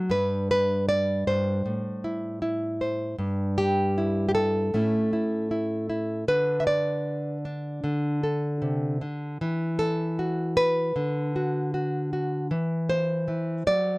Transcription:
0.00 0.11 A4 medium
0.10 1.26 G2 medium
0.10 0.50 B4 medium
0.51 0.88 B4 medium
0.89 1.27 D5 loud
1.27 1.65 G2 medium
1.27 2.80 C5 medium
1.66 3.15 A2 medium
2.04 2.41 E4 soft
2.42 3.15 E4 soft
2.81 3.15 C5 soft
3.19 4.73 G2 medium
3.58 4.27 G4 medium
3.98 4.70 E4 soft
4.29 4.34 G4 medium
4.35 6.28 A4 medium
4.74 6.24 A2 medium
4.74 6.24 A3 soft
4.74 6.24 C#4 soft
4.74 5.12 E4 soft
5.13 5.50 E4 soft
5.51 5.88 E4 soft
5.90 6.24 E4 soft
6.28 7.82 D3 medium
6.28 7.37 B4 loud
6.60 6.66 E5 medium
6.67 7.83 D5 medium
7.45 8.23 D4 soft
7.84 9.00 D3 medium
8.23 9.36 A4 soft
8.62 9.01 C3 medium
9.01 9.40 D3 medium
9.41 10.92 E3 medium
9.79 10.56 A4 medium
10.19 10.92 F#4 soft
10.57 12.51 B4 medium
10.96 12.51 D3 medium
11.36 11.73 F#4 soft
11.74 12.12 F#4 medium
12.13 12.47 F#4 soft
12.51 13.27 E3 medium
12.89 13.98 C5 loud
13.28 13.66 E3 medium
13.67 13.98 F#3 medium
13.67 13.98 D5 loud

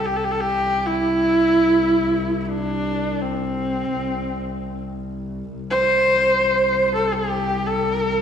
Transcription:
0.00 5.53 C2 medium
0.06 0.18 G4 medium
0.17 0.26 A4 medium
0.25 0.33 G4 medium
0.32 0.42 A4 medium
0.40 0.87 G4 loud
0.86 2.41 E4 loud
2.41 2.50 E4 medium
2.49 3.23 D4 medium
3.22 4.84 C4 medium
5.54 8.22 C2 medium
5.71 6.93 C5 loud
6.95 7.15 A4 medium
7.14 7.68 G4 medium
7.67 8.22 A4 medium

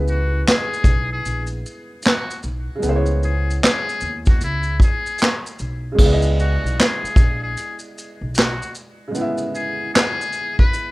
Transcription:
0.00 0.42 C#2 medium
0.00 2.74 C#3 medium
0.00 2.77 G#3 medium
0.00 2.79 B3 medium
0.00 2.81 E4 medium
0.00 2.82 B4 medium
0.08 0.44 F#4 medium
0.08 shaker soft
0.48 1.08 G#4 medium
0.48 snare loud
0.48 clap medium
0.48 closed hi-hat medium
0.48 shaker medium
0.73 shaker soft
0.84 1.22 B1 medium
0.84 kick medium
0.84 shaker medium
1.13 1.47 G#4 medium
1.25 1.62 A#1 medium
1.25 closed hi-hat soft
1.25 shaker medium
1.47 shaker soft
1.66 shaker soft
2.03 2.41 F#4 medium
2.03 snare loud
2.03 closed hi-hat medium
2.03 shaker medium
2.07 clap medium
2.31 shaker soft
2.43 2.67 B1 medium
2.43 shaker soft
2.76 5.90 C#3 medium
2.76 5.93 G#3 medium
2.83 3.58 C#2 loud
2.83 5.95 B3 medium
2.83 5.96 E4 medium
2.83 closed hi-hat medium
2.83 shaker medium
2.89 2.94 C5 medium
2.96 6.01 C#5 medium
3.06 shaker soft
3.23 3.59 G#4 medium
3.23 shaker soft
3.50 shaker soft
3.64 4.24 G#4 medium
3.64 snare loud
3.64 clap medium
3.64 closed hi-hat medium
3.64 shaker medium
3.89 shaker soft
4.01 4.38 D#2 loud
4.01 shaker medium
4.26 4.41 F#4 medium
4.26 kick medium
4.26 shaker soft
4.41 4.78 C#2 medium
4.41 4.78 E4 medium
4.41 closed hi-hat medium
4.41 shaker medium
4.63 shaker soft
4.80 5.42 G#4 medium
4.80 kick medium
4.80 shaker medium
5.06 shaker soft
5.18 snare medium
5.18 closed hi-hat medium
5.18 shaker medium
5.22 clap medium
5.46 shaker soft
5.59 5.96 B1 medium
5.59 shaker soft
5.92 9.06 C#3 medium
5.92 9.09 G#3 medium
5.99 6.59 C#2 loud
5.99 9.11 B3 medium
5.99 9.12 E4 medium
5.99 kick loud
5.99 crash medium
6.05 6.10 D5 medium
6.12 9.17 D#5 medium
6.22 shaker soft
6.39 6.75 F#4 medium
6.39 shaker soft
6.64 6.77 B1 medium
6.64 shaker soft
6.80 7.39 G#4 medium
6.80 snare loud
6.80 clap medium
6.80 closed hi-hat medium
6.80 shaker medium
7.04 muted upright bass stroke soft
7.04 shaker soft
7.16 7.54 A#1 medium
7.16 kick loud
7.16 shaker medium
7.43 7.78 G#4 medium
7.57 closed hi-hat medium
7.57 shaker medium
7.79 shaker soft
7.98 shaker medium
8.21 8.58 B1 medium
8.35 8.72 F#4 medium
8.35 snare loud
8.35 closed hi-hat medium
8.35 shaker medium
8.39 clap medium
8.62 shaker soft
8.75 shaker soft
9.08 10.91 C#3 medium
9.08 10.91 G#3 medium
9.15 10.91 B3 medium
9.15 10.91 E4 medium
9.15 closed hi-hat medium
9.15 shaker medium
9.21 10.91 E5 medium
9.38 shaker soft
9.55 9.90 G#4 medium
9.55 shaker soft
9.94 10.54 G#4 medium
9.94 snare loud
9.94 clap medium
9.94 closed hi-hat medium
9.94 shaker medium
10.21 shaker soft
10.33 shaker soft
10.59 10.91 B4 medium
10.59 kick medium
10.73 closed hi-hat medium
10.73 shaker medium

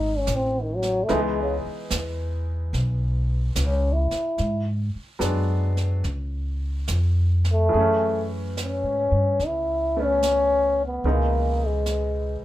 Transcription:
0.00 0.25 G#1 medium
0.00 1.11 F#3 medium
0.00 1.10 A3 soft
0.00 1.10 C4 medium
0.00 0.20 D#4 medium
0.00 1.10 D#4 medium
0.18 0.37 C#4 medium
0.27 1.07 A1 medium
0.27 snare medium
0.27 hi-hat pedal soft
0.36 0.62 C4 medium
0.61 0.77 D#3 medium
0.76 1.05 F#3 medium
0.82 snare soft
1.04 1.23 A3 medium
1.09 1.61 C#2 medium
1.09 3.40 E3 medium
1.09 3.40 G#3 medium
1.09 3.40 B3 medium
1.09 3.40 D#4 medium
1.09 brush sweep soft
1.09 snare soft
1.22 1.41 G#3 medium
1.42 1.57 C#3 medium
1.65 muted upright bass stroke soft
1.90 2.71 E2 medium
1.90 snare medium
1.90 hi-hat pedal medium
2.73 3.53 B1 medium
2.73 brush sweep soft
2.73 snare soft
3.56 4.07 C#2 medium
3.56 snare medium
3.56 hi-hat pedal medium
3.65 3.94 C#4 medium
3.92 4.70 E4 medium
4.11 muted upright bass stroke soft
4.11 snare soft
4.38 4.90 G#2 medium
4.38 brush sweep soft
4.38 snare soft
4.95 muted upright bass stroke soft
5.19 6.01 F#2 medium
5.19 6.03 F#3 soft
5.19 6.03 G#3 soft
5.19 6.03 B3 soft
5.19 6.04 D4 medium
5.19 snare soft
5.19 hi-hat pedal soft
5.77 snare soft
6.04 6.86 C#2 medium
6.04 brush sweep soft
6.04 snare soft
6.88 7.70 F2 medium
6.88 snare medium
6.88 hi-hat pedal medium
7.45 snare soft
7.52 8.28 A3 loud
7.69 11.02 E3 medium
7.69 brush sweep soft
7.74 8.80 F#2 medium
7.74 9.95 A3 soft
7.74 11.04 G#4 soft
7.80 9.98 C#4 medium
8.57 snare soft
8.57 hi-hat pedal soft
8.64 9.48 C#4 medium
8.83 9.09 G#2 medium
9.11 9.37 G2 medium
9.39 11.00 C#2 medium
9.39 brush sweep soft
9.39 snare soft
9.46 10.05 E4 medium
9.97 11.05 A3 soft
9.97 11.05 B3 soft
9.97 11.06 C#4 soft
10.03 10.81 C#4 medium
10.22 snare soft
10.22 hi-hat pedal medium
10.85 11.14 B3 medium
11.04 12.37 C#2 medium
11.04 12.45 B2 soft
11.04 12.45 E3 soft
11.04 12.45 G#3 soft
11.04 12.45 D#4 medium
11.04 brush sweep soft
11.13 11.68 A#3 medium
11.66 12.45 G#3 medium
11.86 snare soft
11.86 hi-hat pedal soft

